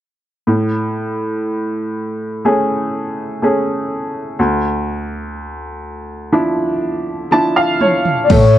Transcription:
0.47 4.35 A2 soft
2.45 3.39 A3 soft
2.45 3.39 C#4 soft
2.45 3.39 G#4 soft
3.42 4.36 A3 soft
3.42 4.36 C#4 soft
3.42 4.36 G#4 soft
4.39 8.26 D2 soft
6.32 7.28 F3 soft
6.32 7.28 D4 soft
6.32 7.28 E4 soft
7.31 8.27 F3 soft
7.31 8.27 D4 soft
7.31 8.28 E4 soft
7.31 7.55 A5 medium
7.31 high tom soft
7.56 7.79 F5 soft
7.81 8.27 C#5 soft
7.81 mid tom medium
8.05 floor tom medium
8.24 8.33 D5 medium
8.30 8.59 A2 medium
8.30 8.59 A3 medium
8.30 8.59 C#5 medium
8.30 kick loud
8.30 floor tom loud
8.30 crash medium

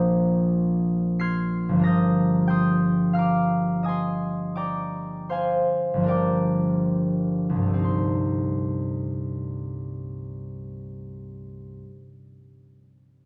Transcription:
0.00 1.81 A#1 soft
0.00 1.70 F3 soft
0.00 1.74 A#3 soft
0.00 1.78 D4 soft
0.00 1.88 C5 soft
0.00 2.22 G5 medium
0.00 1.89 G#5 medium
0.00 1.83 A#5 medium
0.00 1.20 C6 medium
0.00 2.78 D6 soft
0.00 1.84 D#6 medium
0.00 1.19 F6 soft
0.00 1.84 G6 medium
0.00 1.82 A#6 medium
1.19 1.89 C6 medium
1.19 3.13 F6 medium
1.19 1.89 G#6 medium
1.19 1.88 C7 medium
1.69 5.59 G1 soft
1.69 5.62 F3 soft
1.76 5.66 A#3 soft
1.76 5.69 D4 soft
1.82 5.72 A#4 soft
1.82 3.15 A#5 soft
1.82 2.48 D#6 medium
1.82 5.74 A#6 medium
1.87 2.47 G6 soft
2.47 4.55 G5 medium
2.47 3.85 C6 soft
2.47 3.83 D#6 medium
2.47 6.38 G6 medium
3.13 5.29 F5 soft
3.13 4.55 A#5 soft
3.13 7.05 F6 medium
3.19 4.54 D6 soft
3.83 7.73 D#5 soft
3.83 5.29 G#5 soft
3.83 5.07 D#6 medium
3.88 5.28 C6 soft
4.56 6.07 D5 soft
4.56 6.08 G5 soft
4.56 6.08 A#5 soft
4.56 6.07 D6 medium
5.29 9.20 C5 soft
5.29 7.92 F5 soft
5.29 7.92 G#5 soft
5.29 6.68 C6 soft
5.94 7.84 G1 soft
5.94 7.85 F3 soft
6.00 7.87 A#3 soft
6.00 7.88 D4 soft
6.06 7.90 A#4 soft
6.06 7.92 D5 soft
6.06 9.99 G5 soft
6.06 7.91 D6 soft
6.11 7.91 A#5 soft
7.49 11.80 C2 soft
7.55 11.86 G2 soft
7.62 11.92 G3 soft
7.67 11.98 A3 soft
7.74 12.04 C4 soft
7.79 12.10 D#4 soft
7.84 12.14 C6 soft

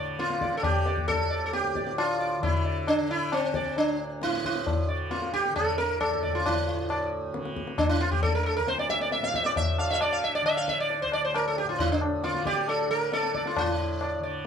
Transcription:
0.00 1.16 D2 medium
0.00 1.77 A2 medium
0.00 0.53 D3 medium
0.00 0.18 D5 soft
0.19 0.57 F4 medium
0.19 tabla te medium
0.30 tabla te medium
0.41 0.62 D5 soft
0.41 tabla ke medium
0.52 2.39 D3 medium
0.52 tabla te medium
0.57 0.64 A4 medium
0.63 1.06 G4 medium
0.63 tabla na medium
0.63 tabla ge medium
0.86 1.07 D5 soft
0.86 tabla te medium
0.97 tabla ge soft
1.08 1.45 A4 medium
1.08 tabla tin medium
1.08 tabla ge medium
1.16 3.62 D2 medium
1.30 1.52 D5 soft
1.46 1.53 A4 medium
1.53 1.98 G4 medium
1.53 tabla te medium
1.64 tabla te medium
1.75 4.25 A2 soft
1.75 1.97 D5 soft
1.75 tabla ke soft
1.87 tabla te soft
1.98 2.43 F4 medium
1.98 tabla na medium
2.20 2.41 D5 soft
2.39 3.01 D3 medium
2.43 2.89 E4 medium
2.43 tabla tin medium
2.43 tabla ge medium
2.65 2.86 D5 soft
2.87 3.11 D4 medium
2.87 tabla na medium
3.01 4.87 D3 medium
3.11 3.34 E4 medium
3.32 3.77 C4 medium
3.32 tabla na medium
3.54 3.76 D5 soft
3.54 tabla ke medium
3.63 6.11 D2 medium
3.77 4.22 D4 medium
3.77 tabla tin medium
4.22 6.72 A2 medium
4.22 4.45 E4 medium
4.22 tabla te medium
4.33 tabla te medium
4.44 4.87 E4 medium
4.44 tabla ke soft
4.56 tabla te medium
4.67 tabla tin medium
4.67 tabla ge medium
4.87 5.50 D3 soft
4.87 5.10 D5 soft
5.11 5.33 F4 medium
5.11 tabla te medium
5.22 tabla te medium
5.34 5.54 G4 medium
5.34 tabla ke medium
5.45 tabla te medium
5.50 7.35 D3 medium
5.56 5.77 A4 medium
5.56 tabla na medium
5.56 tabla ge medium
5.78 5.99 A#4 medium
5.78 tabla te medium
6.00 6.35 A4 medium
6.00 tabla na medium
6.00 tabla ge medium
6.11 8.58 D2 medium
6.23 6.44 D5 soft
6.23 tabla ge soft
6.35 6.46 F4 medium
6.46 7.09 E4 medium
6.46 tabla na medium
6.46 tabla ge medium
6.72 9.20 A2 soft
6.90 7.11 D5 soft
6.90 tabla na medium
7.34 7.96 D3 medium
7.34 tabla te medium
7.45 tabla te medium
7.56 tabla ke medium
7.67 tabla te medium
7.78 7.89 D4 medium
7.78 tabla na medium
7.78 tabla ge medium
7.89 8.01 E4 medium
7.96 9.80 D3 medium
8.00 8.11 F4 medium
8.00 tabla te soft
8.12 8.22 G4 medium
8.12 tabla ge soft
8.23 8.35 A4 medium
8.23 tabla tin medium
8.23 tabla ge medium
8.35 8.42 A#4 medium
8.43 8.56 A4 medium
8.43 8.46 A#4 medium
8.57 11.03 D2 medium
8.57 8.68 A#4 medium
8.67 8.79 C5 medium
8.67 tabla te medium
8.78 8.89 D5 medium
8.78 tabla te medium
8.89 9.01 E5 loud
8.89 tabla ke medium
9.01 9.12 D5 medium
9.01 tabla te medium
9.12 9.24 E5 medium
9.12 tabla te medium
9.20 11.64 A2 medium
9.20 9.35 F5 medium
9.20 tabla te medium
9.34 9.43 E5 medium
9.34 tabla ke soft
9.44 9.57 D5 medium
9.44 9.46 E5 medium
9.44 tabla te medium
9.56 9.79 E5 medium
9.56 tabla tin medium
9.56 tabla ge medium
9.78 10.42 D3 soft
9.78 9.91 F5 medium
9.78 tabla na medium
9.90 9.93 E5 medium
9.90 9.96 F5 medium
9.95 10.01 E5 medium
10.01 10.13 D5 medium
10.01 tabla na medium
10.13 10.24 F5 medium
10.24 10.35 E5 medium
10.35 10.45 D5 medium
10.42 12.27 D3 medium
10.42 10.57 E5 medium
10.46 tabla na medium
10.57 10.69 F5 medium
10.68 10.80 E5 medium
10.68 tabla ke medium
10.80 11.02 D5 medium
10.90 tabla tin medium
11.02 14.47 D2 soft
11.02 11.12 C5 medium
11.12 11.24 D5 medium
11.12 tabla na medium
11.25 11.36 C5 medium
11.34 11.46 A#4 medium
11.34 tabla na medium
11.48 11.58 A4 medium
11.58 11.69 G4 medium
11.64 13.57 A2 medium
11.69 11.79 F4 medium
11.79 11.91 E4 medium
11.79 tabla tin medium
11.79 tabla ge medium
11.92 12.01 D4 medium
12.01 tabla na medium
12.24 12.88 D3 medium
12.24 12.46 F4 medium
12.24 12.44 D5 soft
12.24 tabla te medium
12.34 tabla te medium
12.46 12.68 G4 medium
12.46 12.67 D5 soft
12.46 tabla ke medium
12.57 tabla te medium
12.68 12.90 A4 medium
12.68 12.88 D5 soft
12.68 tabla na medium
12.88 14.19 D3 medium
12.88 13.13 A#4 medium
13.12 13.47 A4 medium
13.12 13.33 D5 soft
13.12 tabla te medium
13.23 tabla te medium
13.35 13.55 D5 soft
13.35 tabla ke medium
13.46 13.58 F4 medium
13.46 tabla te soft
13.56 14.47 A2 medium
13.56 14.20 E4 medium
13.56 tabla na medium
13.56 tabla ge medium
14.01 14.22 D5 soft
14.01 tabla na medium
14.19 14.47 D3 medium
14.23 14.44 D5 soft

